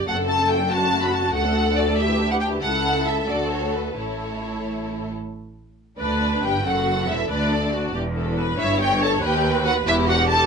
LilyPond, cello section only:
\new Staff \with { instrumentName = "Cello section" } { \clef bass \time 6/8 \key d \major \tempo 4. = 93 fis,2. | d,2. | cis,4. d,4. | a,2~ a,8 r8 |
r4. d,4 g,8 | fis,4 e,8 d,4. | e,4. g,4. | dis,4. e,4. | }